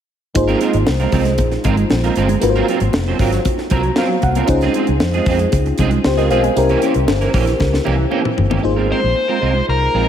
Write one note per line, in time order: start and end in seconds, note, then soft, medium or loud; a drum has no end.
0.35 0.53 G#1 medium
0.35 2.38 A#3 medium
0.35 2.38 D#4 medium
0.35 2.38 F4 medium
0.35 2.39 G#4 medium
0.35 2.39 C5 medium
0.35 muted clean electric guitar stroke soft
0.35 kick loud
0.35 closed hi-hat loud
0.35 muted conga soft
0.48 0.59 G#3 medium
0.48 0.60 C4 medium
0.48 0.60 F4 medium
0.48 0.60 A#4 medium
0.48 closed hi-hat soft
0.60 0.75 G#3 medium
0.60 0.73 C4 medium
0.60 0.72 F4 medium
0.60 0.72 A#4 medium
0.60 closed hi-hat medium
0.73 0.83 G#1 loud
0.73 muted clean electric guitar stroke soft
0.73 closed hi-hat soft
0.87 1.05 C2 medium
0.87 muted clean electric guitar stroke soft
0.87 snare loud
0.87 high conga medium
1.00 1.12 G#3 soft
1.00 1.12 C4 soft
1.00 1.12 F4 medium
1.00 1.13 A#4 medium
1.00 closed hi-hat soft
1.12 1.39 C2 medium
1.12 1.31 G#3 medium
1.12 1.26 C4 medium
1.12 1.25 F4 medium
1.12 1.25 A#4 medium
1.12 kick medium
1.12 open hi-hat medium
1.12 low conga medium
1.25 muted clean electric guitar stroke soft
1.25 snare soft
1.25 closed hi-hat medium
1.38 1.56 A#1 medium
1.38 muted clean electric guitar stroke soft
1.38 kick medium
1.38 closed hi-hat medium
1.38 muted conga medium
1.51 muted clean electric guitar stroke soft
1.51 snare soft
1.51 closed hi-hat soft
1.64 1.82 G#1 medium
1.64 1.83 G#3 medium
1.64 1.77 C4 medium
1.64 1.77 F4 medium
1.64 1.76 A#4 medium
1.64 kick medium
1.64 closed hi-hat medium
1.64 muted conga soft
1.64 low conga medium
1.77 muted clean electric guitar stroke soft
1.77 closed hi-hat soft
1.90 2.09 A#1 medium
1.90 muted clean electric guitar stroke soft
1.90 snare loud
1.90 high conga medium
2.04 2.15 G#3 soft
2.04 2.16 C4 medium
2.04 2.16 F4 medium
2.04 2.16 A#4 medium
2.04 closed hi-hat soft
2.16 2.34 G1 medium
2.16 2.35 G#3 medium
2.16 2.29 C4 medium
2.16 2.29 F4 medium
2.16 2.29 A#4 medium
2.16 closed hi-hat medium
2.29 muted clean electric guitar stroke soft
2.29 closed hi-hat medium
2.29 high conga medium
2.41 2.60 G#1 medium
2.41 4.44 A#3 medium
2.41 4.45 D#4 medium
2.41 4.45 F4 medium
2.41 4.45 F#4 medium
2.41 2.49 B4 medium
2.41 muted clean electric guitar stroke soft
2.41 closed hi-hat loud
2.41 muted conga soft
2.50 4.48 C5 medium
2.56 2.67 F#3 medium
2.56 2.68 C4 medium
2.56 2.68 F4 medium
2.56 2.68 A#4 medium
2.56 closed hi-hat soft
2.68 2.83 F#3 medium
2.68 2.81 C4 medium
2.68 2.81 F4 medium
2.68 2.81 A#4 medium
2.68 closed hi-hat medium
2.80 2.90 G#1 loud
2.80 muted clean electric guitar stroke soft
2.80 closed hi-hat soft
2.93 3.12 F1 medium
2.93 muted clean electric guitar stroke soft
2.93 snare loud
2.93 high conga medium
3.08 3.18 F#3 medium
3.08 3.19 C4 medium
3.08 3.19 F4 medium
3.08 3.20 C5 medium
3.19 3.37 G#1 medium
3.19 3.38 F#3 medium
3.19 3.32 C4 medium
3.19 3.32 F4 medium
3.19 3.31 A#4 medium
3.19 kick medium
3.19 open hi-hat medium
3.32 muted clean electric guitar stroke soft
3.32 snare soft
3.32 closed hi-hat soft
3.45 muted clean electric guitar stroke soft
3.45 kick medium
3.45 closed hi-hat medium
3.45 muted conga medium
3.58 muted clean electric guitar stroke soft
3.58 snare soft
3.70 3.89 C2 medium
3.70 3.90 F#3 medium
3.70 3.84 C4 medium
3.70 3.84 F4 medium
3.70 3.83 A#4 medium
3.70 3.96 A#5 medium
3.70 kick medium
3.70 closed hi-hat medium
3.70 muted conga soft
3.70 low conga medium
3.83 muted clean electric guitar stroke soft
3.83 closed hi-hat soft
3.96 4.16 F#3 medium
3.96 4.10 C4 medium
3.96 4.10 F4 medium
3.96 4.09 A#4 medium
3.96 4.22 F5 medium
3.96 snare loud
3.96 high conga medium
4.10 muted clean electric guitar stroke soft
4.22 4.41 C2 medium
4.22 4.47 F#5 medium
4.22 muted clean electric guitar stroke soft
4.22 kick medium
4.22 closed hi-hat soft
4.35 4.49 F#3 soft
4.35 4.48 C4 medium
4.35 4.49 F4 medium
4.35 4.50 A#4 medium
4.35 closed hi-hat medium
4.35 high conga medium
4.47 4.67 C#2 medium
4.47 6.51 C#4 medium
4.47 6.52 D#4 medium
4.47 6.52 F4 medium
4.47 6.01 G#4 medium
4.47 6.02 C5 medium
4.47 muted clean electric guitar stroke soft
4.47 kick loud
4.47 closed hi-hat medium
4.47 muted conga soft
4.61 4.74 G#3 medium
4.61 4.74 C4 medium
4.61 4.74 F4 medium
4.61 4.75 G#4 medium
4.61 snare soft
4.61 closed hi-hat soft
4.74 4.89 G#3 medium
4.74 4.88 C4 medium
4.74 4.87 F4 medium
4.74 4.87 G#4 medium
4.74 closed hi-hat medium
4.87 4.97 C#2 loud
4.87 muted clean electric guitar stroke soft
4.87 closed hi-hat soft
5.00 5.19 F2 medium
5.00 muted clean electric guitar stroke soft
5.00 snare loud
5.00 high conga medium
5.14 5.26 G#3 medium
5.14 5.27 C4 medium
5.14 5.27 F4 medium
5.14 5.27 G#4 medium
5.14 closed hi-hat soft
5.26 5.44 F2 medium
5.26 5.46 G#3 medium
5.26 5.40 C4 medium
5.26 5.40 F4 medium
5.26 5.39 G#4 medium
5.26 kick loud
5.26 open hi-hat medium
5.26 low conga medium
5.39 muted clean electric guitar stroke soft
5.39 closed hi-hat medium
5.52 5.70 C#2 medium
5.52 muted clean electric guitar stroke soft
5.52 kick medium
5.52 closed hi-hat medium
5.52 muted conga medium
5.66 muted clean electric guitar stroke soft
5.66 closed hi-hat soft
5.78 5.96 C2 loud
5.78 5.98 G#3 medium
5.78 5.92 C4 medium
5.78 5.91 F4 medium
5.78 5.91 G#4 medium
5.78 kick medium
5.78 closed hi-hat medium
5.78 muted conga soft
5.78 low conga medium
5.91 muted clean electric guitar stroke medium
5.91 closed hi-hat soft
6.04 6.30 C#2 medium
6.04 6.17 G4 soft
6.04 6.17 C5 medium
6.04 muted clean electric guitar stroke soft
6.04 snare loud
6.04 high conga medium
6.17 6.29 G#3 soft
6.17 6.30 C4 medium
6.17 6.30 F4 medium
6.17 6.30 G#4 medium
6.17 6.30 A#4 medium
6.17 6.30 D#5 medium
6.17 closed hi-hat soft
6.30 6.48 B1 medium
6.30 6.49 G#3 medium
6.30 6.44 C4 medium
6.30 6.43 F4 medium
6.30 6.43 G#4 loud
6.30 6.43 C5 medium
6.30 6.43 F5 medium
6.30 closed hi-hat soft
6.43 6.68 D#5 medium
6.43 6.68 G#5 medium
6.43 muted clean electric guitar stroke soft
6.43 closed hi-hat medium
6.43 high conga medium
6.56 6.74 C2 medium
6.56 8.60 C#4 medium
6.56 8.60 E4 medium
6.56 8.60 G4 medium
6.56 8.61 A#4 medium
6.56 8.61 C5 medium
6.56 muted clean electric guitar stroke soft
6.56 closed hi-hat medium
6.69 6.81 E3 medium
6.69 6.81 A#3 medium
6.69 6.82 C#4 medium
6.69 6.82 G4 medium
6.69 closed hi-hat soft
6.82 6.97 E3 medium
6.82 6.95 A#3 medium
6.82 6.95 C#4 medium
6.82 6.94 G4 medium
6.82 closed hi-hat medium
6.94 7.04 C2 medium
6.94 muted clean electric guitar stroke soft
6.94 closed hi-hat soft
7.08 7.26 G1 loud
7.08 muted clean electric guitar stroke soft
7.08 snare loud
7.08 high conga medium
7.21 7.32 E3 medium
7.21 7.33 A#3 medium
7.21 7.33 C#4 medium
7.21 7.34 A#4 medium
7.21 closed hi-hat soft
7.33 7.52 A#1 medium
7.33 7.52 E3 medium
7.33 7.47 A#3 medium
7.33 7.46 C#4 medium
7.33 7.46 G4 medium
7.33 kick medium
7.33 open hi-hat medium
7.47 muted clean electric guitar stroke medium
7.47 snare soft
7.47 closed hi-hat soft
7.59 7.78 C#2 medium
7.59 muted clean electric guitar stroke soft
7.59 kick medium
7.59 snare soft
7.59 muted conga medium
7.72 muted clean electric guitar stroke soft
7.72 snare medium
7.84 8.04 C2 medium
7.84 8.04 E3 medium
7.84 7.97 A#3 medium
7.84 7.97 C#4 medium
7.84 7.96 G4 medium
7.84 muted conga soft
7.84 low conga medium
7.98 muted clean electric guitar stroke soft
8.10 8.30 E3 medium
8.10 8.23 A#3 medium
8.10 8.23 C#4 medium
8.10 8.22 G4 medium
8.10 high conga medium
8.24 muted clean electric guitar stroke soft
8.24 mid tom medium
8.37 8.56 G1 medium
8.37 muted clean electric guitar stroke soft
8.37 floor tom medium
8.50 8.63 E3 soft
8.50 8.63 A#3 medium
8.50 8.64 C#4 soft
8.50 8.64 G4 medium
8.50 floor tom medium
8.50 high conga medium
8.62 8.91 G#1 medium
8.62 10.09 A#3 medium
8.62 10.09 D#4 medium
8.62 10.09 F4 medium
8.62 10.09 G#4 medium
8.62 10.09 C5 medium
8.62 muted clean electric guitar stroke soft
8.76 8.88 G#3 soft
8.76 8.89 C4 medium
8.76 8.89 F4 medium
8.76 8.89 A#4 medium
8.90 9.04 G#3 medium
8.90 9.01 C4 medium
8.90 9.01 F4 medium
8.90 9.01 A#4 medium
8.90 9.65 C5 medium
9.02 9.12 A#1 medium
9.02 muted clean electric guitar stroke soft
9.15 muted clean electric guitar stroke soft
9.28 9.40 G#3 soft
9.28 9.41 C4 medium
9.28 9.41 F4 medium
9.28 9.41 A#4 medium
9.41 9.60 C2 medium
9.41 9.60 G#3 medium
9.41 9.55 C4 medium
9.41 9.55 F4 medium
9.41 9.54 A#4 medium
9.55 muted clean electric guitar stroke soft
9.68 9.86 C2 medium
9.68 10.09 A#4 medium
9.68 muted clean electric guitar stroke soft
9.81 muted clean electric guitar stroke soft
9.94 10.09 A#1 medium
9.94 10.09 G#3 medium
9.94 10.07 C4 medium
9.94 10.07 F4 medium
9.94 10.06 A#4 medium